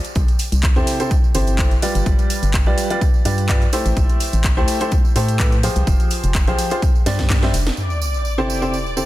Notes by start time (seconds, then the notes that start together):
0.04 closed hi-hat, tambourine
0.15 C2, kick, closed hi-hat, tambourine
0.28 closed hi-hat, tambourine
0.39 open hi-hat, tambourine
0.52 C2, closed hi-hat, tambourine
0.63 kick, clap, closed hi-hat, tambourine
0.76 E2 C3 E4 G4 A4 C5, tambourine
0.87 open hi-hat, tambourine
1.00 C3 E4 G4 A4 C5, closed hi-hat, tambourine
1.11 kick, closed hi-hat, tambourine
1.24 tambourine
1.34 G1 C3 E4 G4 A4 C5, open hi-hat, tambourine
1.47 closed hi-hat, tambourine
1.59 E4 G4 A4 C5, kick, clap, closed hi-hat, tambourine
1.71 closed hi-hat, tambourine
1.82 G3 F4 G4 B4 D5, open hi-hat, tambourine
1.95 G1, closed hi-hat, tambourine
2.06 G1, kick, closed hi-hat, tambourine
2.19 closed hi-hat, tambourine
2.30 open hi-hat, tambourine
2.43 G1, closed hi-hat, tambourine
2.54 kick, clap, closed hi-hat, tambourine
2.66 B1 G3 F4 G4 B4 D5, tambourine
2.78 open hi-hat, tambourine
2.90 G3 F4 G4 B4 D5, closed hi-hat, tambourine
3.01 kick, closed hi-hat, tambourine
3.14 tambourine
3.25 G2 G3 F4 G4 B4 D5, open hi-hat, tambourine
3.38 closed hi-hat, tambourine
3.49 F4 G4 B4 D5, kick, clap, closed hi-hat, tambourine
3.62 closed hi-hat, tambourine
3.73 A3 E4 G4 A4 C5, open hi-hat, tambourine
3.86 A1, closed hi-hat, tambourine
3.96 A1, kick, closed hi-hat, tambourine
4.09 closed hi-hat, tambourine
4.20 open hi-hat, tambourine
4.33 A1, closed hi-hat, tambourine
4.44 kick, clap, closed hi-hat, tambourine
4.57 D2 A3 E4 G4 A4 C5, tambourine
4.68 open hi-hat, tambourine
4.80 A3 E4 G4 A4 C5, closed hi-hat, tambourine
4.91 kick, closed hi-hat, tambourine
5.05 tambourine
5.16 A2 A3 E4 G4 A4 C5, open hi-hat, tambourine
5.28 closed hi-hat, tambourine
5.39 A3 E4 G4 A4 B4, kick, clap, closed hi-hat, tambourine
5.52 closed hi-hat, tambourine
5.63 F3 F4 G4 G#4 C5, open hi-hat, tambourine
5.76 C2, closed hi-hat, tambourine
5.87 F1, kick, closed hi-hat, tambourine
6.00 closed hi-hat, tambourine
6.10 open hi-hat, tambourine
6.23 F1, closed hi-hat, tambourine
6.35 kick, clap, closed hi-hat, tambourine
6.47 B1 F3 F4 G4 G#4 C5, closed hi-hat, tambourine
6.58 open hi-hat, tambourine
6.70 F4 G4 G#4 C5, closed hi-hat, tambourine
6.82 kick, closed hi-hat, tambourine
6.95 tambourine
7.06 G2 G3 D4 G4 C5 D5, snare, open hi-hat, tambourine
7.19 kick, snare, closed hi-hat, tambourine
7.30 kick, snare, clap, closed hi-hat, tambourine
7.43 G3 D4 G4 C5 E5, snare, closed hi-hat, tambourine
7.54 F1, open hi-hat, tambourine
7.66 snare, closed hi-hat, tambourine
7.77 D5 D6, tambourine, sub drop
7.90 tambourine
8.02 tambourine
8.14 tambourine
8.25 tambourine
8.38 C3 E4 G4 A4 C5, tambourine
8.50 tambourine
8.62 C3 E4 G4 A4 C5, tambourine
8.74 tambourine
8.86 tambourine
8.97 C3 E4 G4 A4 C5, tambourine